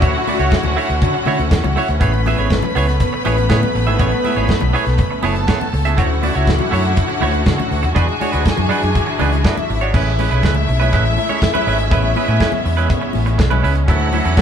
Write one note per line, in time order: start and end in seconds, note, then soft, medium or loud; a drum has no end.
0.00 0.12 D2 loud
0.00 1.97 D3 medium
0.00 0.21 A3 medium
0.00 5.94 C#4 medium
0.00 1.97 E4 medium
0.00 0.14 E4 medium
0.00 1.97 F#4 medium
0.00 0.14 F#4 medium
0.00 0.13 C#5 medium
0.00 1.97 F#5 medium
0.00 kick loud
0.00 closed hi-hat medium
0.00 muted conga soft
0.14 muted clean electric guitar stroke soft
0.27 0.40 A3 medium
0.27 0.39 E4 medium
0.27 0.39 F#4 medium
0.27 0.39 D5 medium
0.27 open hi-hat medium
0.27 high conga loud
0.39 0.49 C#2 medium
0.39 0.55 A3 soft
0.39 0.55 E4 soft
0.39 0.55 F#4 medium
0.39 0.54 C#5 medium
0.39 closed hi-hat soft
0.51 kick loud
0.51 snare medium
0.51 closed hi-hat soft
0.51 muted conga soft
0.63 0.75 D2 medium
0.63 muted clean electric guitar stroke soft
0.63 muted conga soft
0.63 high conga medium
0.63 low conga medium
0.76 0.96 A3 medium
0.76 0.90 E4 medium
0.76 0.89 F#4 medium
0.76 0.88 C#5 medium
0.76 open hi-hat medium
0.89 1.00 D2 medium
0.89 muted clean electric guitar stroke soft
0.89 closed hi-hat soft
1.02 1.12 D3 loud
1.02 muted clean electric guitar stroke soft
1.02 kick loud
1.02 closed hi-hat medium
1.14 muted clean electric guitar stroke soft
1.14 muted conga soft
1.26 1.37 D3 medium
1.26 1.46 A3 medium
1.26 1.39 E4 medium
1.26 1.38 F#4 medium
1.26 1.38 C#5 medium
1.26 open hi-hat medium
1.26 high conga medium
1.39 1.49 D2 medium
1.39 muted clean electric guitar stroke soft
1.39 closed hi-hat soft
1.39 high conga medium
1.51 1.62 E2 medium
1.51 muted clean electric guitar stroke soft
1.51 kick loud
1.51 snare loud
1.51 closed hi-hat medium
1.64 1.74 C#2 medium
1.64 muted clean electric guitar stroke soft
1.64 muted conga soft
1.64 high conga medium
1.64 low conga medium
1.76 1.95 A3 medium
1.76 1.89 E4 medium
1.76 1.88 F#4 medium
1.76 1.88 C#5 medium
1.76 open hi-hat medium
1.76 high conga soft
1.88 1.99 D2 medium
1.88 muted clean electric guitar stroke soft
1.88 closed hi-hat soft
2.00 2.31 A1 loud
2.00 5.93 A3 medium
2.00 5.93 B3 medium
2.00 2.20 B3 medium
2.00 2.14 E4 medium
2.00 2.13 G#4 medium
2.00 5.19 B4 medium
2.00 2.12 C#5 medium
2.00 5.19 B5 medium
2.00 kick loud
2.00 closed hi-hat medium
2.00 muted conga soft
2.13 muted clean electric guitar stroke soft
2.13 muted conga soft
2.26 2.39 B3 medium
2.26 2.39 E4 medium
2.26 2.38 G#4 medium
2.26 2.38 E5 medium
2.26 open hi-hat medium
2.26 high conga medium
2.38 2.59 G#1 medium
2.38 2.54 B3 soft
2.38 2.54 E4 medium
2.38 2.54 G#4 medium
2.38 2.53 C#5 medium
2.38 closed hi-hat soft
2.50 kick loud
2.50 snare medium
2.50 closed hi-hat medium
2.50 muted conga soft
2.63 muted clean electric guitar stroke soft
2.63 muted conga soft
2.63 high conga medium
2.63 low conga medium
2.75 2.96 C#2 medium
2.75 2.95 B3 medium
2.75 2.88 E4 medium
2.75 2.87 G#4 medium
2.75 2.86 C#5 medium
2.75 open hi-hat medium
2.88 muted clean electric guitar stroke soft
2.88 snare soft
2.88 closed hi-hat soft
3.00 muted clean electric guitar stroke soft
3.00 kick loud
3.00 closed hi-hat medium
3.00 muted conga soft
3.13 muted clean electric guitar stroke soft
3.25 3.46 A1 medium
3.25 3.44 B3 medium
3.25 3.37 E4 medium
3.25 3.37 G#4 medium
3.25 3.36 C#5 medium
3.25 open hi-hat medium
3.25 high conga medium
3.37 muted clean electric guitar stroke soft
3.37 closed hi-hat soft
3.37 high conga medium
3.49 3.60 A2 loud
3.49 3.69 B3 medium
3.49 3.62 E4 medium
3.49 3.62 G#4 medium
3.49 3.61 C#5 medium
3.49 kick loud
3.49 snare loud
3.49 closed hi-hat medium
3.49 muted conga soft
3.62 muted clean electric guitar stroke soft
3.62 high conga medium
3.62 low conga medium
3.75 3.85 A1 medium
3.75 muted clean electric guitar stroke soft
3.75 open hi-hat medium
3.87 3.97 G#1 medium
3.87 3.98 B3 soft
3.87 3.99 E4 soft
3.87 3.99 G#4 soft
3.87 4.00 E5 medium
3.87 closed hi-hat soft
3.99 4.10 A1 loud
3.99 4.18 B3 medium
3.99 4.12 E4 medium
3.99 4.12 G#4 medium
3.99 4.11 C#5 medium
3.99 kick loud
3.99 closed hi-hat medium
3.99 muted conga soft
4.12 muted clean electric guitar stroke medium
4.12 muted conga soft
4.24 4.37 B3 medium
4.24 4.36 E4 medium
4.24 4.36 G#4 medium
4.24 4.36 E5 medium
4.24 open hi-hat medium
4.24 high conga medium
4.36 4.47 G#1 medium
4.36 4.52 B3 soft
4.36 4.52 E4 medium
4.36 4.52 G#4 medium
4.36 4.52 C#5 medium
4.36 closed hi-hat soft
4.48 kick loud
4.48 snare medium
4.48 closed hi-hat medium
4.48 muted conga soft
4.61 4.72 B1 medium
4.61 muted clean electric guitar stroke soft
4.61 high conga medium
4.61 low conga medium
4.73 4.93 B3 medium
4.73 4.86 E4 medium
4.73 4.85 G#4 medium
4.73 4.85 C#5 medium
4.73 open hi-hat medium
4.86 4.96 B1 medium
4.86 muted clean electric guitar stroke soft
4.86 snare soft
4.86 closed hi-hat soft
4.98 muted clean electric guitar stroke soft
4.98 kick loud
4.98 closed hi-hat medium
4.98 muted conga soft
5.11 muted clean electric guitar stroke soft
5.23 5.44 F#1 medium
5.23 5.42 B3 medium
5.23 5.36 E4 medium
5.23 5.35 G#4 medium
5.23 5.96 A4 medium
5.23 5.35 C#5 medium
5.23 5.96 A5 medium
5.23 open hi-hat medium
5.23 high conga medium
5.36 muted clean electric guitar stroke soft
5.36 closed hi-hat soft
5.36 high conga medium
5.47 5.67 B3 medium
5.47 5.60 E4 medium
5.47 5.60 G#4 medium
5.47 5.59 C#5 medium
5.47 kick loud
5.47 snare loud
5.47 closed hi-hat medium
5.60 muted clean electric guitar stroke soft
5.60 high conga medium
5.60 low conga medium
5.72 5.98 C#2 medium
5.72 muted clean electric guitar stroke soft
5.72 open hi-hat medium
5.85 5.96 B3 soft
5.85 5.96 E4 soft
5.85 5.98 G#4 medium
5.85 5.98 E5 medium
5.85 closed hi-hat medium
5.97 6.28 D2 loud
5.97 7.94 D3 medium
5.97 6.16 A3 medium
5.97 7.94 C#4 medium
5.97 6.10 E4 medium
5.97 7.94 E4 medium
5.97 7.92 F#4 medium
5.97 9.90 F#4 medium
5.97 6.09 F#4 medium
5.97 6.09 C#5 medium
5.97 7.92 F#5 medium
5.97 kick loud
5.97 closed hi-hat medium
5.97 muted conga soft
6.10 muted clean electric guitar stroke soft
6.22 6.35 A3 medium
6.22 6.35 E4 medium
6.22 6.34 F#4 medium
6.22 6.34 D5 medium
6.22 open hi-hat medium
6.22 high conga medium
6.35 6.56 C#2 medium
6.35 6.51 A3 medium
6.35 6.51 E4 medium
6.35 6.50 F#4 medium
6.35 6.50 C#5 medium
6.35 closed hi-hat soft
6.47 kick loud
6.47 snare loud
6.47 closed hi-hat medium
6.47 muted conga soft
6.59 muted clean electric guitar stroke soft
6.59 muted conga soft
6.59 high conga medium
6.59 low conga medium
6.71 6.93 F#2 medium
6.71 6.91 A3 medium
6.71 6.84 E4 medium
6.71 6.84 F#4 loud
6.71 6.83 C#5 medium
6.71 open hi-hat medium
6.84 muted clean electric guitar stroke soft
6.84 closed hi-hat soft
6.96 muted clean electric guitar stroke soft
6.96 kick loud
6.96 closed hi-hat medium
7.08 muted clean electric guitar stroke soft
7.08 muted conga soft
7.21 7.42 D2 medium
7.21 7.41 A3 medium
7.21 7.33 E4 medium
7.21 7.33 F#4 medium
7.21 7.32 C#5 medium
7.21 open hi-hat medium
7.21 high conga medium
7.33 muted clean electric guitar stroke soft
7.33 closed hi-hat soft
7.33 high conga medium
7.46 7.57 D3 loud
7.46 muted clean electric guitar stroke soft
7.46 kick loud
7.46 snare loud
7.46 closed hi-hat medium
7.46 muted conga soft
7.58 muted clean electric guitar stroke soft
7.58 muted conga soft
7.58 high conga medium
7.58 low conga medium
7.71 7.81 D2 medium
7.71 open hi-hat medium
7.83 7.94 D#2 medium
7.83 muted clean electric guitar stroke soft
7.83 closed hi-hat soft
7.95 8.06 E2 loud
7.95 9.92 E3 medium
7.95 8.15 G#3 medium
7.95 9.92 D4 medium
7.95 8.08 D4 medium
7.95 8.07 F#4 medium
7.95 9.92 G#4 medium
7.95 9.41 G#4 medium
7.95 8.07 B4 loud
7.95 9.41 G#5 medium
7.95 kick loud
7.95 closed hi-hat medium
7.95 muted conga soft
8.08 muted clean electric guitar stroke soft
8.08 muted conga soft
8.20 8.33 G#3 medium
8.20 8.32 D4 medium
8.20 8.32 F#4 medium
8.20 8.32 C#5 medium
8.20 open hi-hat medium
8.20 high conga loud
8.32 8.44 D2 medium
8.32 8.49 G#3 medium
8.32 8.48 D4 medium
8.32 8.48 F#4 medium
8.32 8.48 B4 medium
8.32 closed hi-hat soft
8.45 kick loud
8.45 snare loud
8.45 closed hi-hat medium
8.45 muted conga soft
8.57 8.68 F#2 medium
8.57 muted clean electric guitar stroke soft
8.57 high conga medium
8.57 low conga medium
8.69 8.89 G#3 medium
8.69 8.82 D4 medium
8.69 8.82 F#4 medium
8.69 8.81 B4 medium
8.69 open hi-hat medium
8.83 8.93 F#2 medium
8.83 muted clean electric guitar stroke soft
8.83 closed hi-hat soft
8.95 muted clean electric guitar stroke soft
8.95 kick loud
8.95 closed hi-hat medium
8.95 muted conga soft
9.07 muted clean electric guitar stroke soft
9.19 9.40 C#2 medium
9.19 9.39 G#3 medium
9.19 9.32 D4 medium
9.19 9.31 F#4 medium
9.19 9.31 B4 medium
9.19 open hi-hat medium
9.19 high conga medium
9.32 muted clean electric guitar stroke soft
9.32 closed hi-hat soft
9.32 high conga medium
9.44 9.63 G#3 medium
9.44 9.57 D4 medium
9.44 9.93 E4 medium
9.44 9.56 F#4 medium
9.44 9.56 B4 medium
9.44 9.93 E5 medium
9.44 kick loud
9.44 snare loud
9.44 closed hi-hat medium
9.57 muted clean electric guitar stroke soft
9.57 muted conga soft
9.57 high conga medium
9.57 low conga medium
9.69 9.90 G#1 medium
9.69 muted clean electric guitar stroke soft
9.69 open hi-hat medium
9.81 9.92 G#3 soft
9.81 9.94 D4 medium
9.81 9.95 F#4 soft
9.81 9.95 C#5 medium
9.81 closed hi-hat soft
9.94 10.24 A1 loud
9.94 10.13 G#3 medium
9.94 13.84 G#3 medium
9.94 11.89 A3 medium
9.94 14.42 C#4 medium
9.94 10.13 C#4 medium
9.94 13.60 E4 medium
9.94 10.14 E4 medium
9.94 10.14 B4 medium
9.94 13.60 E5 loud
9.94 kick loud
9.94 crash medium
10.19 10.32 G#3 medium
10.19 10.31 C#4 medium
10.19 10.31 E4 medium
10.19 10.30 B4 medium
10.19 open hi-hat medium
10.19 high conga medium
10.31 10.41 B1 medium
10.31 10.42 G#3 medium
10.31 10.42 C#4 medium
10.31 10.43 E4 medium
10.31 10.44 B4 medium
10.31 closed hi-hat soft
10.43 10.63 C#2 medium
10.43 10.62 G#3 medium
10.43 10.56 C#4 medium
10.43 10.55 E4 medium
10.43 10.54 B4 medium
10.43 kick loud
10.43 snare loud
10.43 closed hi-hat medium
10.55 muted clean electric guitar stroke soft
10.55 high conga medium
10.55 low conga medium
10.68 10.88 B1 medium
10.68 muted clean electric guitar stroke soft
10.68 open hi-hat medium
10.80 10.91 G#3 soft
10.80 10.92 C#4 medium
10.80 10.93 E4 medium
10.80 10.93 B4 medium
10.80 closed hi-hat soft
10.92 11.13 A1 loud
10.92 11.12 G#3 medium
10.92 11.05 C#4 medium
10.92 11.05 E4 medium
10.92 11.04 B4 loud
10.92 kick loud
10.92 closed hi-hat medium
10.92 muted conga soft
11.05 muted clean electric guitar stroke soft
11.17 muted clean electric guitar stroke soft
11.17 open hi-hat medium
11.17 high conga medium
11.29 11.41 G#3 soft
11.29 11.41 C#4 medium
11.29 11.42 E4 medium
11.29 11.43 C#5 soft
11.29 closed hi-hat soft
11.29 high conga medium
11.42 muted clean electric guitar stroke soft
11.42 kick loud
11.42 snare loud
11.42 closed hi-hat medium
11.42 muted conga soft
11.54 11.65 G#3 soft
11.54 11.66 C#4 medium
11.54 11.66 E4 medium
11.54 11.67 B4 medium
11.54 muted conga soft
11.54 high conga medium
11.54 low conga medium
11.66 11.87 G#1 medium
11.66 11.86 G#3 medium
11.66 11.78 C#4 medium
11.66 11.78 E4 medium
11.66 11.77 B4 medium
11.66 open hi-hat medium
11.79 muted clean electric guitar stroke soft
11.79 closed hi-hat soft
11.91 12.12 A1 loud
11.91 12.10 G#3 medium
11.91 13.86 B3 medium
11.91 12.10 C#4 medium
11.91 12.11 E4 medium
11.91 12.11 B4 medium
11.91 kick loud
11.91 closed hi-hat medium
11.91 muted conga soft
12.15 12.29 G#3 medium
12.15 12.28 C#4 medium
12.15 12.28 E4 medium
12.15 12.27 B4 medium
12.15 open hi-hat medium
12.15 high conga loud
12.28 12.38 A2 medium
12.28 12.39 G#3 soft
12.28 12.39 C#4 medium
12.28 12.40 E4 medium
12.28 12.40 B4 medium
12.28 closed hi-hat soft
12.40 12.59 G#3 medium
12.40 12.53 C#4 medium
12.40 12.52 E4 medium
12.40 12.51 B4 medium
12.40 kick loud
12.40 snare loud
12.40 closed hi-hat medium
12.52 muted clean electric guitar stroke soft
12.52 muted conga soft
12.52 high conga medium
12.52 low conga medium
12.65 12.85 E2 medium
12.65 muted clean electric guitar stroke soft
12.65 open hi-hat medium
12.77 12.88 G#3 medium
12.77 12.89 C#4 medium
12.77 12.89 E4 medium
12.77 12.89 B4 medium
12.77 closed hi-hat soft
12.89 muted clean electric guitar stroke soft
12.89 kick loud
12.89 closed hi-hat medium
13.01 muted clean electric guitar stroke soft
13.01 muted conga soft
13.13 13.35 A1 medium
13.13 open hi-hat medium
13.13 high conga medium
13.26 muted clean electric guitar stroke soft
13.26 closed hi-hat soft
13.26 high conga medium
13.38 13.59 B1 loud
13.38 muted clean electric guitar stroke soft
13.38 kick loud
13.38 snare loud
13.38 closed hi-hat medium
13.38 muted conga soft
13.50 13.61 G#3 medium
13.50 13.62 C#4 soft
13.50 13.62 E4 medium
13.50 13.63 B4 medium
13.50 high conga medium
13.50 low conga medium
13.62 13.84 C#2 medium
13.62 13.82 G#3 medium
13.62 13.76 C#4 medium
13.62 13.75 E4 medium
13.62 13.74 B4 medium
13.62 open hi-hat medium
13.75 muted clean electric guitar stroke soft
13.75 closed hi-hat soft
13.88 14.18 D2 loud
13.88 14.42 D3 medium
13.88 14.07 F#3 medium
13.88 14.07 C#4 medium
13.88 14.42 E4 medium
13.88 14.08 E4 medium
13.88 14.42 F#4 medium
13.88 14.08 A4 medium
13.88 14.42 F#5 loud
13.88 kick loud
13.88 closed hi-hat medium
13.88 muted conga soft
14.00 muted conga soft
14.12 14.25 F#3 medium
14.12 14.24 C#4 medium
14.12 14.24 E4 medium
14.12 14.23 A4 medium
14.12 open hi-hat medium
14.12 high conga loud
14.24 14.35 E2 medium
14.24 14.36 F#3 medium
14.24 14.36 C#4 medium
14.24 14.37 E4 medium
14.24 14.38 A4 medium
14.24 closed hi-hat soft
14.37 14.42 F#2 loud
14.37 14.42 F#3 medium
14.37 14.42 C#4 loud
14.37 14.42 E4 loud
14.37 kick loud
14.37 snare loud
14.37 closed hi-hat medium